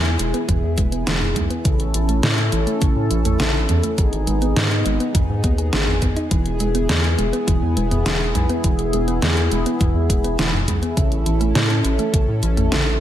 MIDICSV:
0, 0, Header, 1, 5, 480
1, 0, Start_track
1, 0, Key_signature, 4, "major"
1, 0, Tempo, 582524
1, 1361, Time_signature, 4, 2, 24, 8
1, 10713, End_track
2, 0, Start_track
2, 0, Title_t, "Analog synth pad"
2, 0, Program_c, 0, 89
2, 0, Note_on_c, 0, 59, 79
2, 0, Note_on_c, 0, 64, 72
2, 0, Note_on_c, 0, 68, 86
2, 1329, Note_off_c, 0, 68, 0
2, 1330, Note_off_c, 0, 59, 0
2, 1361, Note_on_c, 0, 69, 85
2, 1362, Note_on_c, 0, 61, 80
2, 3249, Note_off_c, 0, 64, 0
2, 3262, Note_off_c, 0, 69, 0
2, 3263, Note_off_c, 0, 61, 0
2, 3282, Note_on_c, 0, 59, 77
2, 3282, Note_on_c, 0, 63, 74
2, 3283, Note_on_c, 0, 68, 86
2, 5183, Note_off_c, 0, 59, 0
2, 5183, Note_off_c, 0, 63, 0
2, 5201, Note_on_c, 0, 64, 70
2, 5202, Note_on_c, 0, 59, 79
2, 9009, Note_off_c, 0, 59, 0
2, 9009, Note_off_c, 0, 68, 0
2, 9038, Note_on_c, 0, 61, 78
2, 9038, Note_on_c, 0, 69, 88
2, 10713, Note_off_c, 0, 61, 0
2, 10713, Note_off_c, 0, 64, 0
2, 10713, Note_off_c, 0, 69, 0
2, 10713, End_track
3, 0, Start_track
3, 0, Title_t, "Synth arpeggio sound"
3, 0, Program_c, 1, 84
3, 159, Note_on_c, 1, 56, 79
3, 219, Note_off_c, 1, 56, 0
3, 280, Note_on_c, 1, 59, 77
3, 379, Note_off_c, 1, 59, 0
3, 398, Note_on_c, 1, 52, 97
3, 498, Note_off_c, 1, 52, 0
3, 639, Note_on_c, 1, 56, 76
3, 699, Note_off_c, 1, 56, 0
3, 758, Note_on_c, 1, 59, 74
3, 858, Note_off_c, 1, 59, 0
3, 878, Note_on_c, 1, 52, 99
3, 978, Note_off_c, 1, 52, 0
3, 1119, Note_on_c, 1, 56, 75
3, 1179, Note_off_c, 1, 56, 0
3, 1240, Note_on_c, 1, 59, 79
3, 1339, Note_off_c, 1, 59, 0
3, 1360, Note_on_c, 1, 49, 102
3, 1459, Note_off_c, 1, 49, 0
3, 1601, Note_on_c, 1, 52, 78
3, 1660, Note_off_c, 1, 52, 0
3, 1720, Note_on_c, 1, 57, 76
3, 1819, Note_off_c, 1, 57, 0
3, 1838, Note_on_c, 1, 49, 99
3, 1938, Note_off_c, 1, 49, 0
3, 2079, Note_on_c, 1, 52, 78
3, 2139, Note_off_c, 1, 52, 0
3, 2199, Note_on_c, 1, 57, 76
3, 2299, Note_off_c, 1, 57, 0
3, 2318, Note_on_c, 1, 49, 99
3, 2418, Note_off_c, 1, 49, 0
3, 2560, Note_on_c, 1, 52, 78
3, 2620, Note_off_c, 1, 52, 0
3, 2680, Note_on_c, 1, 57, 75
3, 2779, Note_off_c, 1, 57, 0
3, 2799, Note_on_c, 1, 49, 98
3, 2899, Note_off_c, 1, 49, 0
3, 3041, Note_on_c, 1, 52, 75
3, 3100, Note_off_c, 1, 52, 0
3, 3160, Note_on_c, 1, 57, 77
3, 3259, Note_off_c, 1, 57, 0
3, 3280, Note_on_c, 1, 51, 98
3, 3379, Note_off_c, 1, 51, 0
3, 3521, Note_on_c, 1, 56, 80
3, 3580, Note_off_c, 1, 56, 0
3, 3641, Note_on_c, 1, 59, 77
3, 3739, Note_off_c, 1, 59, 0
3, 3760, Note_on_c, 1, 51, 102
3, 3859, Note_off_c, 1, 51, 0
3, 4002, Note_on_c, 1, 56, 75
3, 4061, Note_off_c, 1, 56, 0
3, 4123, Note_on_c, 1, 59, 78
3, 4221, Note_off_c, 1, 59, 0
3, 4241, Note_on_c, 1, 51, 100
3, 4340, Note_off_c, 1, 51, 0
3, 4480, Note_on_c, 1, 59, 77
3, 4540, Note_off_c, 1, 59, 0
3, 4600, Note_on_c, 1, 68, 76
3, 4699, Note_off_c, 1, 68, 0
3, 4721, Note_on_c, 1, 68, 80
3, 4780, Note_off_c, 1, 68, 0
3, 4960, Note_on_c, 1, 59, 75
3, 5059, Note_off_c, 1, 59, 0
3, 5080, Note_on_c, 1, 63, 101
3, 5179, Note_off_c, 1, 63, 0
3, 5200, Note_on_c, 1, 52, 102
3, 5299, Note_off_c, 1, 52, 0
3, 5440, Note_on_c, 1, 56, 78
3, 5500, Note_off_c, 1, 56, 0
3, 5560, Note_on_c, 1, 59, 77
3, 5659, Note_off_c, 1, 59, 0
3, 5679, Note_on_c, 1, 52, 102
3, 5778, Note_off_c, 1, 52, 0
3, 5919, Note_on_c, 1, 56, 78
3, 5979, Note_off_c, 1, 56, 0
3, 6039, Note_on_c, 1, 59, 79
3, 6138, Note_off_c, 1, 59, 0
3, 6158, Note_on_c, 1, 52, 100
3, 6258, Note_off_c, 1, 52, 0
3, 6399, Note_on_c, 1, 56, 79
3, 6459, Note_off_c, 1, 56, 0
3, 6519, Note_on_c, 1, 59, 78
3, 6619, Note_off_c, 1, 59, 0
3, 6640, Note_on_c, 1, 52, 99
3, 6739, Note_off_c, 1, 52, 0
3, 6880, Note_on_c, 1, 56, 76
3, 6940, Note_off_c, 1, 56, 0
3, 7000, Note_on_c, 1, 59, 76
3, 7099, Note_off_c, 1, 59, 0
3, 7120, Note_on_c, 1, 52, 102
3, 7219, Note_off_c, 1, 52, 0
3, 7361, Note_on_c, 1, 56, 79
3, 7420, Note_off_c, 1, 56, 0
3, 7481, Note_on_c, 1, 59, 75
3, 7580, Note_off_c, 1, 59, 0
3, 7602, Note_on_c, 1, 52, 100
3, 7700, Note_off_c, 1, 52, 0
3, 7841, Note_on_c, 1, 56, 75
3, 7900, Note_off_c, 1, 56, 0
3, 7961, Note_on_c, 1, 59, 75
3, 8060, Note_off_c, 1, 59, 0
3, 8081, Note_on_c, 1, 52, 101
3, 8179, Note_off_c, 1, 52, 0
3, 8320, Note_on_c, 1, 56, 77
3, 8380, Note_off_c, 1, 56, 0
3, 8440, Note_on_c, 1, 59, 74
3, 8539, Note_off_c, 1, 59, 0
3, 8561, Note_on_c, 1, 52, 97
3, 8659, Note_off_c, 1, 52, 0
3, 8800, Note_on_c, 1, 56, 78
3, 8860, Note_off_c, 1, 56, 0
3, 8920, Note_on_c, 1, 59, 75
3, 9019, Note_off_c, 1, 59, 0
3, 9038, Note_on_c, 1, 49, 103
3, 9138, Note_off_c, 1, 49, 0
3, 9279, Note_on_c, 1, 52, 81
3, 9339, Note_off_c, 1, 52, 0
3, 9398, Note_on_c, 1, 57, 76
3, 9498, Note_off_c, 1, 57, 0
3, 9518, Note_on_c, 1, 49, 100
3, 9618, Note_off_c, 1, 49, 0
3, 9760, Note_on_c, 1, 52, 77
3, 9820, Note_off_c, 1, 52, 0
3, 9879, Note_on_c, 1, 57, 77
3, 9979, Note_off_c, 1, 57, 0
3, 10000, Note_on_c, 1, 49, 102
3, 10099, Note_off_c, 1, 49, 0
3, 10241, Note_on_c, 1, 52, 77
3, 10300, Note_off_c, 1, 52, 0
3, 10361, Note_on_c, 1, 57, 75
3, 10459, Note_off_c, 1, 57, 0
3, 10482, Note_on_c, 1, 49, 101
3, 10580, Note_off_c, 1, 49, 0
3, 10713, End_track
4, 0, Start_track
4, 0, Title_t, "Analog synth bass"
4, 0, Program_c, 2, 38
4, 0, Note_on_c, 2, 40, 88
4, 141, Note_off_c, 2, 40, 0
4, 159, Note_on_c, 2, 28, 86
4, 270, Note_off_c, 2, 28, 0
4, 400, Note_on_c, 2, 28, 90
4, 511, Note_off_c, 2, 28, 0
4, 520, Note_on_c, 2, 40, 81
4, 631, Note_off_c, 2, 40, 0
4, 640, Note_on_c, 2, 28, 94
4, 861, Note_off_c, 2, 28, 0
4, 878, Note_on_c, 2, 28, 84
4, 1100, Note_off_c, 2, 28, 0
4, 1120, Note_on_c, 2, 35, 88
4, 1231, Note_off_c, 2, 35, 0
4, 1360, Note_on_c, 2, 33, 102
4, 1471, Note_off_c, 2, 33, 0
4, 1480, Note_on_c, 2, 33, 99
4, 1591, Note_off_c, 2, 33, 0
4, 1602, Note_on_c, 2, 33, 83
4, 1822, Note_off_c, 2, 33, 0
4, 1841, Note_on_c, 2, 45, 91
4, 2062, Note_off_c, 2, 45, 0
4, 2081, Note_on_c, 2, 33, 82
4, 2191, Note_off_c, 2, 33, 0
4, 2321, Note_on_c, 2, 33, 85
4, 2431, Note_off_c, 2, 33, 0
4, 2441, Note_on_c, 2, 45, 85
4, 2551, Note_off_c, 2, 45, 0
4, 2559, Note_on_c, 2, 33, 95
4, 2780, Note_off_c, 2, 33, 0
4, 2800, Note_on_c, 2, 33, 85
4, 3021, Note_off_c, 2, 33, 0
4, 3042, Note_on_c, 2, 40, 85
4, 3152, Note_off_c, 2, 40, 0
4, 3281, Note_on_c, 2, 32, 103
4, 3391, Note_off_c, 2, 32, 0
4, 3402, Note_on_c, 2, 32, 104
4, 3512, Note_off_c, 2, 32, 0
4, 3522, Note_on_c, 2, 32, 86
4, 3742, Note_off_c, 2, 32, 0
4, 3762, Note_on_c, 2, 44, 90
4, 3982, Note_off_c, 2, 44, 0
4, 4002, Note_on_c, 2, 32, 83
4, 4112, Note_off_c, 2, 32, 0
4, 4241, Note_on_c, 2, 32, 91
4, 4351, Note_off_c, 2, 32, 0
4, 4361, Note_on_c, 2, 44, 83
4, 4471, Note_off_c, 2, 44, 0
4, 4480, Note_on_c, 2, 39, 90
4, 4701, Note_off_c, 2, 39, 0
4, 4722, Note_on_c, 2, 32, 82
4, 4942, Note_off_c, 2, 32, 0
4, 4960, Note_on_c, 2, 32, 96
4, 5071, Note_off_c, 2, 32, 0
4, 5200, Note_on_c, 2, 28, 99
4, 5311, Note_off_c, 2, 28, 0
4, 5321, Note_on_c, 2, 28, 102
4, 5431, Note_off_c, 2, 28, 0
4, 5442, Note_on_c, 2, 28, 84
4, 5662, Note_off_c, 2, 28, 0
4, 5682, Note_on_c, 2, 40, 89
4, 5902, Note_off_c, 2, 40, 0
4, 5921, Note_on_c, 2, 28, 81
4, 6032, Note_off_c, 2, 28, 0
4, 6161, Note_on_c, 2, 28, 87
4, 6271, Note_off_c, 2, 28, 0
4, 6282, Note_on_c, 2, 40, 84
4, 6392, Note_off_c, 2, 40, 0
4, 6402, Note_on_c, 2, 28, 93
4, 6622, Note_off_c, 2, 28, 0
4, 6642, Note_on_c, 2, 28, 85
4, 6862, Note_off_c, 2, 28, 0
4, 6880, Note_on_c, 2, 35, 85
4, 6991, Note_off_c, 2, 35, 0
4, 7120, Note_on_c, 2, 28, 102
4, 7231, Note_off_c, 2, 28, 0
4, 7239, Note_on_c, 2, 28, 99
4, 7350, Note_off_c, 2, 28, 0
4, 7359, Note_on_c, 2, 28, 84
4, 7581, Note_off_c, 2, 28, 0
4, 7600, Note_on_c, 2, 40, 89
4, 7821, Note_off_c, 2, 40, 0
4, 7840, Note_on_c, 2, 28, 85
4, 7951, Note_off_c, 2, 28, 0
4, 8080, Note_on_c, 2, 28, 87
4, 8191, Note_off_c, 2, 28, 0
4, 8199, Note_on_c, 2, 40, 83
4, 8310, Note_off_c, 2, 40, 0
4, 8320, Note_on_c, 2, 28, 94
4, 8541, Note_off_c, 2, 28, 0
4, 8560, Note_on_c, 2, 28, 88
4, 8781, Note_off_c, 2, 28, 0
4, 8799, Note_on_c, 2, 35, 85
4, 8910, Note_off_c, 2, 35, 0
4, 9040, Note_on_c, 2, 33, 102
4, 9151, Note_off_c, 2, 33, 0
4, 9160, Note_on_c, 2, 33, 99
4, 9270, Note_off_c, 2, 33, 0
4, 9281, Note_on_c, 2, 33, 86
4, 9501, Note_off_c, 2, 33, 0
4, 9520, Note_on_c, 2, 45, 89
4, 9741, Note_off_c, 2, 45, 0
4, 9761, Note_on_c, 2, 33, 82
4, 9871, Note_off_c, 2, 33, 0
4, 9999, Note_on_c, 2, 33, 86
4, 10110, Note_off_c, 2, 33, 0
4, 10119, Note_on_c, 2, 45, 82
4, 10230, Note_off_c, 2, 45, 0
4, 10240, Note_on_c, 2, 33, 93
4, 10461, Note_off_c, 2, 33, 0
4, 10481, Note_on_c, 2, 33, 86
4, 10701, Note_off_c, 2, 33, 0
4, 10713, End_track
5, 0, Start_track
5, 0, Title_t, "Drums"
5, 40, Note_on_c, 9, 42, 39
5, 123, Note_off_c, 9, 42, 0
5, 160, Note_on_c, 9, 42, 81
5, 242, Note_off_c, 9, 42, 0
5, 280, Note_on_c, 9, 42, 54
5, 363, Note_off_c, 9, 42, 0
5, 400, Note_on_c, 9, 36, 124
5, 401, Note_on_c, 9, 42, 81
5, 401, Note_on_c, 9, 45, 84
5, 483, Note_off_c, 9, 36, 0
5, 483, Note_off_c, 9, 42, 0
5, 483, Note_off_c, 9, 45, 0
5, 639, Note_on_c, 9, 42, 84
5, 640, Note_on_c, 9, 36, 113
5, 722, Note_off_c, 9, 42, 0
5, 723, Note_off_c, 9, 36, 0
5, 761, Note_on_c, 9, 42, 55
5, 843, Note_off_c, 9, 42, 0
5, 881, Note_on_c, 9, 38, 121
5, 881, Note_on_c, 9, 42, 82
5, 964, Note_off_c, 9, 38, 0
5, 964, Note_off_c, 9, 42, 0
5, 1001, Note_on_c, 9, 45, 87
5, 1083, Note_off_c, 9, 45, 0
5, 1120, Note_on_c, 9, 36, 60
5, 1121, Note_on_c, 9, 42, 81
5, 1121, Note_on_c, 9, 45, 84
5, 1203, Note_off_c, 9, 36, 0
5, 1203, Note_off_c, 9, 42, 0
5, 1203, Note_off_c, 9, 45, 0
5, 1240, Note_on_c, 9, 42, 52
5, 1322, Note_off_c, 9, 42, 0
5, 1360, Note_on_c, 9, 36, 125
5, 1360, Note_on_c, 9, 42, 79
5, 1443, Note_off_c, 9, 36, 0
5, 1443, Note_off_c, 9, 42, 0
5, 1481, Note_on_c, 9, 42, 37
5, 1563, Note_off_c, 9, 42, 0
5, 1600, Note_on_c, 9, 42, 78
5, 1683, Note_off_c, 9, 42, 0
5, 1721, Note_on_c, 9, 42, 53
5, 1803, Note_off_c, 9, 42, 0
5, 1840, Note_on_c, 9, 38, 125
5, 1840, Note_on_c, 9, 42, 81
5, 1922, Note_off_c, 9, 38, 0
5, 1922, Note_off_c, 9, 42, 0
5, 1959, Note_on_c, 9, 42, 37
5, 2042, Note_off_c, 9, 42, 0
5, 2079, Note_on_c, 9, 42, 79
5, 2161, Note_off_c, 9, 42, 0
5, 2200, Note_on_c, 9, 42, 54
5, 2283, Note_off_c, 9, 42, 0
5, 2320, Note_on_c, 9, 42, 81
5, 2321, Note_on_c, 9, 36, 127
5, 2402, Note_off_c, 9, 42, 0
5, 2403, Note_off_c, 9, 36, 0
5, 2559, Note_on_c, 9, 42, 82
5, 2642, Note_off_c, 9, 42, 0
5, 2679, Note_on_c, 9, 42, 53
5, 2679, Note_on_c, 9, 45, 85
5, 2762, Note_off_c, 9, 42, 0
5, 2762, Note_off_c, 9, 45, 0
5, 2800, Note_on_c, 9, 38, 122
5, 2800, Note_on_c, 9, 42, 81
5, 2882, Note_off_c, 9, 38, 0
5, 2882, Note_off_c, 9, 42, 0
5, 3040, Note_on_c, 9, 42, 78
5, 3040, Note_on_c, 9, 45, 85
5, 3122, Note_off_c, 9, 42, 0
5, 3122, Note_off_c, 9, 45, 0
5, 3160, Note_on_c, 9, 42, 54
5, 3242, Note_off_c, 9, 42, 0
5, 3280, Note_on_c, 9, 42, 78
5, 3281, Note_on_c, 9, 36, 121
5, 3362, Note_off_c, 9, 42, 0
5, 3363, Note_off_c, 9, 36, 0
5, 3401, Note_on_c, 9, 42, 37
5, 3483, Note_off_c, 9, 42, 0
5, 3521, Note_on_c, 9, 42, 80
5, 3603, Note_off_c, 9, 42, 0
5, 3641, Note_on_c, 9, 42, 50
5, 3723, Note_off_c, 9, 42, 0
5, 3761, Note_on_c, 9, 38, 123
5, 3761, Note_on_c, 9, 42, 78
5, 3844, Note_off_c, 9, 38, 0
5, 3844, Note_off_c, 9, 42, 0
5, 3882, Note_on_c, 9, 42, 36
5, 3964, Note_off_c, 9, 42, 0
5, 4002, Note_on_c, 9, 42, 80
5, 4084, Note_off_c, 9, 42, 0
5, 4123, Note_on_c, 9, 42, 51
5, 4205, Note_off_c, 9, 42, 0
5, 4241, Note_on_c, 9, 36, 125
5, 4242, Note_on_c, 9, 42, 77
5, 4242, Note_on_c, 9, 45, 87
5, 4323, Note_off_c, 9, 36, 0
5, 4324, Note_off_c, 9, 42, 0
5, 4324, Note_off_c, 9, 45, 0
5, 4481, Note_on_c, 9, 36, 107
5, 4481, Note_on_c, 9, 42, 78
5, 4563, Note_off_c, 9, 36, 0
5, 4563, Note_off_c, 9, 42, 0
5, 4601, Note_on_c, 9, 42, 50
5, 4684, Note_off_c, 9, 42, 0
5, 4720, Note_on_c, 9, 38, 120
5, 4720, Note_on_c, 9, 42, 76
5, 4802, Note_off_c, 9, 38, 0
5, 4802, Note_off_c, 9, 42, 0
5, 4840, Note_on_c, 9, 45, 85
5, 4922, Note_off_c, 9, 45, 0
5, 4960, Note_on_c, 9, 42, 75
5, 4960, Note_on_c, 9, 45, 87
5, 4961, Note_on_c, 9, 36, 61
5, 5042, Note_off_c, 9, 42, 0
5, 5042, Note_off_c, 9, 45, 0
5, 5044, Note_off_c, 9, 36, 0
5, 5080, Note_on_c, 9, 42, 50
5, 5162, Note_off_c, 9, 42, 0
5, 5200, Note_on_c, 9, 42, 73
5, 5201, Note_on_c, 9, 36, 117
5, 5283, Note_off_c, 9, 42, 0
5, 5284, Note_off_c, 9, 36, 0
5, 5319, Note_on_c, 9, 42, 35
5, 5402, Note_off_c, 9, 42, 0
5, 5440, Note_on_c, 9, 42, 75
5, 5522, Note_off_c, 9, 42, 0
5, 5560, Note_on_c, 9, 42, 48
5, 5642, Note_off_c, 9, 42, 0
5, 5680, Note_on_c, 9, 38, 117
5, 5680, Note_on_c, 9, 42, 75
5, 5762, Note_off_c, 9, 38, 0
5, 5762, Note_off_c, 9, 42, 0
5, 5801, Note_on_c, 9, 42, 34
5, 5883, Note_off_c, 9, 42, 0
5, 5921, Note_on_c, 9, 42, 75
5, 6003, Note_off_c, 9, 42, 0
5, 6042, Note_on_c, 9, 42, 50
5, 6125, Note_off_c, 9, 42, 0
5, 6161, Note_on_c, 9, 36, 120
5, 6161, Note_on_c, 9, 42, 73
5, 6244, Note_off_c, 9, 36, 0
5, 6244, Note_off_c, 9, 42, 0
5, 6401, Note_on_c, 9, 42, 75
5, 6484, Note_off_c, 9, 42, 0
5, 6521, Note_on_c, 9, 42, 51
5, 6521, Note_on_c, 9, 45, 89
5, 6603, Note_off_c, 9, 42, 0
5, 6603, Note_off_c, 9, 45, 0
5, 6641, Note_on_c, 9, 38, 116
5, 6641, Note_on_c, 9, 42, 73
5, 6723, Note_off_c, 9, 38, 0
5, 6723, Note_off_c, 9, 42, 0
5, 6881, Note_on_c, 9, 42, 74
5, 6881, Note_on_c, 9, 45, 91
5, 6963, Note_off_c, 9, 42, 0
5, 6963, Note_off_c, 9, 45, 0
5, 7000, Note_on_c, 9, 42, 48
5, 7082, Note_off_c, 9, 42, 0
5, 7120, Note_on_c, 9, 36, 115
5, 7120, Note_on_c, 9, 42, 73
5, 7202, Note_off_c, 9, 42, 0
5, 7203, Note_off_c, 9, 36, 0
5, 7241, Note_on_c, 9, 42, 34
5, 7323, Note_off_c, 9, 42, 0
5, 7360, Note_on_c, 9, 42, 76
5, 7443, Note_off_c, 9, 42, 0
5, 7480, Note_on_c, 9, 42, 49
5, 7563, Note_off_c, 9, 42, 0
5, 7600, Note_on_c, 9, 38, 117
5, 7600, Note_on_c, 9, 42, 77
5, 7683, Note_off_c, 9, 38, 0
5, 7683, Note_off_c, 9, 42, 0
5, 7720, Note_on_c, 9, 42, 35
5, 7803, Note_off_c, 9, 42, 0
5, 7841, Note_on_c, 9, 42, 75
5, 7923, Note_off_c, 9, 42, 0
5, 7961, Note_on_c, 9, 42, 50
5, 8043, Note_off_c, 9, 42, 0
5, 8080, Note_on_c, 9, 36, 120
5, 8080, Note_on_c, 9, 42, 73
5, 8080, Note_on_c, 9, 45, 91
5, 8163, Note_off_c, 9, 36, 0
5, 8163, Note_off_c, 9, 42, 0
5, 8163, Note_off_c, 9, 45, 0
5, 8320, Note_on_c, 9, 36, 107
5, 8321, Note_on_c, 9, 42, 77
5, 8402, Note_off_c, 9, 36, 0
5, 8404, Note_off_c, 9, 42, 0
5, 8441, Note_on_c, 9, 42, 49
5, 8524, Note_off_c, 9, 42, 0
5, 8561, Note_on_c, 9, 38, 114
5, 8561, Note_on_c, 9, 42, 72
5, 8643, Note_off_c, 9, 38, 0
5, 8643, Note_off_c, 9, 42, 0
5, 8680, Note_on_c, 9, 45, 91
5, 8763, Note_off_c, 9, 45, 0
5, 8800, Note_on_c, 9, 36, 59
5, 8800, Note_on_c, 9, 42, 72
5, 8800, Note_on_c, 9, 45, 94
5, 8882, Note_off_c, 9, 36, 0
5, 8883, Note_off_c, 9, 42, 0
5, 8883, Note_off_c, 9, 45, 0
5, 8921, Note_on_c, 9, 42, 48
5, 9003, Note_off_c, 9, 42, 0
5, 9040, Note_on_c, 9, 36, 115
5, 9040, Note_on_c, 9, 42, 78
5, 9123, Note_off_c, 9, 36, 0
5, 9123, Note_off_c, 9, 42, 0
5, 9161, Note_on_c, 9, 42, 36
5, 9243, Note_off_c, 9, 42, 0
5, 9280, Note_on_c, 9, 42, 79
5, 9363, Note_off_c, 9, 42, 0
5, 9400, Note_on_c, 9, 42, 50
5, 9483, Note_off_c, 9, 42, 0
5, 9520, Note_on_c, 9, 38, 110
5, 9520, Note_on_c, 9, 42, 79
5, 9603, Note_off_c, 9, 38, 0
5, 9603, Note_off_c, 9, 42, 0
5, 9641, Note_on_c, 9, 42, 36
5, 9723, Note_off_c, 9, 42, 0
5, 9761, Note_on_c, 9, 42, 75
5, 9843, Note_off_c, 9, 42, 0
5, 9880, Note_on_c, 9, 42, 51
5, 9962, Note_off_c, 9, 42, 0
5, 10000, Note_on_c, 9, 36, 117
5, 10001, Note_on_c, 9, 42, 75
5, 10082, Note_off_c, 9, 36, 0
5, 10083, Note_off_c, 9, 42, 0
5, 10240, Note_on_c, 9, 42, 80
5, 10323, Note_off_c, 9, 42, 0
5, 10361, Note_on_c, 9, 42, 52
5, 10361, Note_on_c, 9, 45, 94
5, 10443, Note_off_c, 9, 42, 0
5, 10443, Note_off_c, 9, 45, 0
5, 10481, Note_on_c, 9, 38, 112
5, 10481, Note_on_c, 9, 42, 76
5, 10563, Note_off_c, 9, 38, 0
5, 10563, Note_off_c, 9, 42, 0
5, 10713, End_track
0, 0, End_of_file